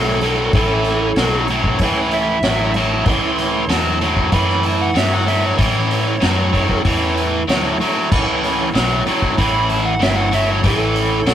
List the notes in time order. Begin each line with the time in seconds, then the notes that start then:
Already playing: B1 A2 F#3 A4
0.06 C#4 E4 A4 C#5
0.21 A2 F#3, open hi-hat
0.52 A1 A2 E3 C#4 E4 A4 C#5, kick, open hi-hat
0.84 snare, open hi-hat
1.16 B1 A2 F#3, snare, open hi-hat
1.46 C#4 E4 A4 C#5, open hi-hat
1.50 A2 F#3
1.64 kick
1.78 C#2 A2 E3, kick, open hi-hat
2.11 E5, open hi-hat
2.42 A1 A2 F#3, snare, open hi-hat
2.57 C#4 E4 A4 C#5
2.74 A2 F#3 A5, open hi-hat
3.03 C#2 A2 C#4 E4 A4 C#5 C6, kick, open hi-hat
3.07 E3
3.38 snare, open hi-hat
3.68 E2 A2 F#3 A5, snare, open hi-hat
4.00 A2 F#3 C#4 E4 A4 C#5, open hi-hat
4.17 kick
4.32 F#2 A2 E3 B5, kick, open hi-hat
4.49 snare
4.63 A5, open hi-hat
4.81 F#5
4.94 G2 A2 F#3 E5, snare, open hi-hat
5.08 C#4 E4 A4 C#5
5.13 F#5
5.26 A2 F#3 E5, open hi-hat
5.46 C#5
5.56 A2 E3 C#4 E4 A4 C#5, kick, open hi-hat
5.91 open hi-hat
6.20 F#2 A2 F#3, snare, open hi-hat
6.52 A2 F#3 C#4 E4 A4 C#5, kick, open hi-hat
6.69 kick
6.85 E2 A2 E3, kick, open hi-hat
7.17 open hi-hat
7.48 D2 A2 F#3, snare, open hi-hat
7.62 C#4 E4 A4 C#5
7.80 A2 F#3, muted fingered electric bass stroke, open hi-hat
8.09 C#2 A2 E3 C#4 E4 A4 C#5, kick, crash
8.44 snare, open hi-hat
8.74 B1 A2 F#3, snare, open hi-hat
9.05 A2 F#3 C#4 E4 A4 C#5, muted fingered electric bass stroke, open hi-hat
9.22 kick
9.38 A1 A2 E3 B5, kick, open hi-hat
9.69 A5, open hi-hat
9.85 F#5
10.00 G1 A2 F#3 E5, snare, open hi-hat
10.16 C#4 E4 A4 C#5 F#5
10.31 A2 F#3 E5, open hi-hat
10.51 C#5
10.62 A1 A2 E3 C#4 E4 A4 C#5, kick, open hi-hat
10.67 A4
10.96 open hi-hat
11.25 B1 A2 F#3, snare, open hi-hat